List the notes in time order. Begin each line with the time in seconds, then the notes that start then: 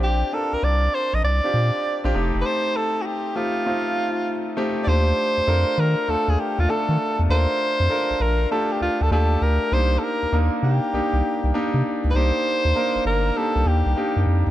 Already playing: A#1 C4 D4 F4 G4
0.03 G4
0.33 C4 D4 F4 A4 A#4
0.53 C2 A#4
0.63 C2 D5
0.95 C5
1.13 A#1 D#5
1.24 C2 D5
1.44 C4 D4 F4 G4
1.54 A#2
2.04 A#1 C4 D4 F4 G4
2.14 F1 A3 C4 D#4 G4
2.35 F#1
2.41 B4
2.46 C5
2.76 A4
3.02 F#4
3.06 G4
3.35 A3 C4 D#4 F4 G4
3.66 A3 C4 D#4 F4
4.57 A3 C4 D#4 G4
4.83 D#2 A3 D5
4.88 D4 F4 G4 C5
5.37 F2
5.47 F2 D4 F4 A4 A#4
5.78 D#3 A#4
6.08 D#2 A3 D4 F4 A4
6.28 D#2 G#4
6.40 G4
6.59 D#2 F4
6.68 A3 D4 F4 A4
6.89 D#3
7.19 E2
7.29 D#2 D4 F4 A4 A#4 C5
7.80 F2
7.90 D4 F4 A4 A#4
8.10 A#1
8.20 A#1 A#4
8.51 A3 D4 F4 G4 A4
8.72 G4
8.81 D2 F4
9.01 D2 A4
9.11 D#2 A3 D4 F4 G4 A4
9.42 D2 A#4
9.72 C2 A#3 D4 D#4 G4 C5
9.99 A4
10.03 A#4
10.23 D#2
10.32 D#2 A#3 D4 D#4 A#4
10.63 C3 G4
10.93 C2 A#3 D4 D#4 G4
11.13 C2
11.44 C2
11.54 A#3 D4 D#4 G4
11.74 C3
12.04 C#2
12.11 B4
12.15 C2 A#3 D4 D#4 G4 C5
12.65 D#2
12.75 A#3 D4 D#4 A#4
12.95 G1
13.05 G1 A#4
13.36 A#3 D4 D#4 G4 A4
13.56 C2
13.66 D#2 G4
13.86 C2
13.96 A#3 D4 D#4 G4
14.16 F#2
14.27 F2
14.47 E2